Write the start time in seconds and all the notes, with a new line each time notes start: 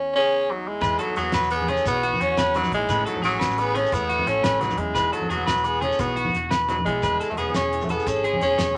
Already playing: E2 C#4
0.16 C#4 G#4
0.51 F#3 D#4
0.68 G#3 E4
0.81 E2 B4, kick, crash, high conga, shekere
0.99 F#3 B3 D#4 A4, closed hi-hat, low conga
1.16 E2 F#3 F#4 G#4, closed hi-hat, shekere
1.22 B3
1.32 E2 B2 B4, snare, closed hi-hat, shekere
1.43 shekere
1.50 E3 B3, closed hi-hat, shekere
1.55 G#4
1.60 low conga
1.68 B3 C#4 G#4, closed hi-hat, high conga
1.73 A4, shekere
1.86 B1 E2 B3 F#4, kick, closed hi-hat, low conga, shekere
2.03 B3 F#4, closed hi-hat, low conga
2.13 high conga, low conga
2.21 E2 C#4 F#4, snare, closed hi-hat
2.30 low conga
2.37 E2 B4, snare, closed hi-hat, low conga, shekere
2.54 F#2 F#3 D#4, closed hi-hat, high conga, shekere
2.63 low conga, shekere
2.72 A#1 G#2 G#3, kick, closed hi-hat
2.76 E4
2.89 A1 A2 E3 B3 C#4 B4, kick, closed hi-hat, high conga, shekere
2.93 muted clean electric guitar stroke
3.06 F#3 B3 D#4 A4, closed hi-hat, low conga
3.15 low conga
3.23 A1 F#3 C#4 G#4, closed hi-hat, shekere
3.27 C#4
3.39 A1 B4, snare, closed hi-hat, shekere
3.51 shekere
3.58 E3 B3 G#4, closed hi-hat, shekere
3.75 B3 C#4 G#4 A4, closed hi-hat, high conga
3.86 shekere
3.92 E2 A2 B3 E4, kick, closed hi-hat, low conga, shekere
4.09 B3 F#4, closed hi-hat, low conga
4.19 high conga, low conga
4.27 A1 C#4 A4, snare, closed hi-hat
4.44 A1 A2 B4, snare, closed hi-hat, shekere
4.61 G#2 F#3 D#4, closed hi-hat, high conga, shekere
4.70 low conga, shekere
4.78 E2 F#2 G#3 E4, kick, closed hi-hat
4.95 E1 E2 B4, kick, closed hi-hat, high conga, shekere
5.13 F#3 B3 D#4 A4, closed hi-hat, low conga
5.21 low conga
5.30 E1 F#3 B3 F#4 G#4, closed hi-hat, shekere
5.37 high conga
5.47 E1 B2 B4, snare, closed hi-hat, low conga, shekere
5.57 shekere
5.64 E3 B3 G#4, closed hi-hat, shekere
5.81 B3 C#4 G#4 A4, closed hi-hat, high conga
5.92 shekere
5.99 B1 E2 B3 F#4, kick, closed hi-hat, low conga, shekere
6.16 B3 F#4, closed hi-hat, low conga
6.25 high conga, low conga
6.34 E1 F#4, snare, closed hi-hat
6.43 low conga
6.51 E1 B2 B4, snare, closed hi-hat, low conga, shekere
6.69 E3 F#3 D#4, closed hi-hat, high conga, shekere
6.79 low conga
6.85 B1 G#3 B3 E4, kick, closed hi-hat
7.03 E1 E2 B4, kick, closed hi-hat, high conga, low conga, shekere
7.13 low conga
7.20 G#3 A4, closed hi-hat, low conga, shekere
7.30 A3 F#4, low conga
7.37 E1 B3 C#4 G#4, closed hi-hat, low conga, shekere
7.49 high conga
7.54 E1 E2 C#4 G#4 C#5, snare, closed hi-hat, shekere
7.73 E3, closed hi-hat
7.81 A3 F#4, low conga, shekere
7.89 B3 A4, closed hi-hat, low conga, shekere
7.95 G#4
7.99 shekere
8.07 G#1 C#4, muted clean electric guitar stroke, kick, closed hi-hat, shekere
8.11 G#4
8.16 low conga
8.24 G#3 G#4, closed hi-hat
8.33 high conga, low conga
8.41 E1 C#4 G#4, closed hi-hat, low conga, shekere
8.51 low conga
8.58 E1 E2 C#5, snare, closed hi-hat, shekere
8.69 low conga